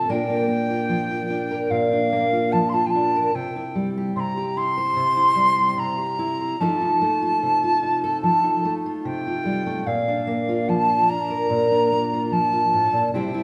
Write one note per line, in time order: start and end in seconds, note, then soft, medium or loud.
0.00 0.12 A5 loud
0.09 1.70 A#2 medium
0.09 0.47 A#3 medium
0.09 0.27 D4 medium
0.09 0.69 F4 medium
0.09 1.50 A#4 medium
0.09 1.72 G5 loud
0.29 1.29 D4 medium
0.48 2.11 A#3 medium
0.70 1.09 F4 medium
0.89 2.52 F3 medium
1.11 2.32 F4 medium
1.30 1.92 D4 medium
1.51 3.14 A#4 medium
1.70 3.29 A#2 medium
1.70 2.53 F5 loud
1.93 2.94 D4 medium
2.12 3.29 A#3 medium
2.33 2.73 F4 medium
2.52 3.30 F3 medium
2.52 2.70 A5 loud
2.69 2.87 A5 loud
2.69 2.73 C6 medium
2.74 3.30 F4 medium
2.86 2.90 G5 medium
2.86 3.36 A5 loud
2.95 3.30 D4 medium
3.16 3.30 A#4 medium
3.34 4.15 C3 medium
3.34 3.89 G5 medium
3.56 4.56 E4 medium
3.75 5.34 G3 medium
3.97 4.36 G4 medium
4.16 4.95 C3 medium
4.16 4.58 A#5 medium
4.16 4.20 C6 medium
4.37 5.57 G4 medium
4.57 5.16 E4 medium
4.57 5.80 C6 loud
4.78 6.39 C5 medium
4.96 5.76 C3 medium
5.17 6.18 E4 medium
5.36 6.59 G3 medium
5.58 5.97 G4 medium
5.77 6.55 C3 medium
5.77 6.62 A#5 loud
5.99 6.55 G4 medium
6.19 6.55 E4 medium
6.41 6.56 C5 medium
6.60 8.23 F3 medium
6.60 7.00 A3 medium
6.60 6.80 D#4 medium
6.60 7.22 F4 medium
6.60 8.03 A4 medium
6.60 8.21 A5 loud
6.81 7.82 D#4 medium
7.01 8.64 A3 medium
7.22 7.63 F4 medium
7.43 8.24 C3 medium
7.64 8.85 F4 medium
7.83 8.43 D#4 medium
8.04 9.87 A4 medium
8.22 9.81 F3 medium
8.22 8.73 A5 loud
8.44 9.81 D#4 medium
8.65 9.45 A3 medium
8.86 9.26 F4 medium
9.04 9.81 C3 medium
9.04 9.88 G5 medium
9.27 9.82 F4 medium
9.45 9.66 G3 medium
9.66 9.86 A3 medium
9.86 11.49 A#2 medium
9.86 10.70 F5 medium
10.08 11.10 D4 medium
10.27 11.90 A#3 medium
10.49 10.88 F4 medium
10.68 12.30 F3 medium
10.68 11.10 A5 loud
10.89 12.11 F4 medium
11.09 11.70 D4 medium
11.09 12.34 A#5 loud
11.30 13.08 A#4 medium
11.50 12.72 A#2 medium
11.71 13.08 D4 medium
11.92 13.09 A#3 medium
12.13 12.52 F4 medium
12.32 13.08 F3 medium
12.32 13.13 A5 loud
12.53 13.08 F4 medium
12.73 12.92 A2 medium
12.93 13.13 A#2 medium
13.14 13.43 C3 medium
13.14 13.43 G3 medium
13.14 13.33 E4 medium
13.14 13.43 G4 medium
13.14 13.43 C5 medium
13.14 13.43 G5 medium
13.34 13.43 E4 medium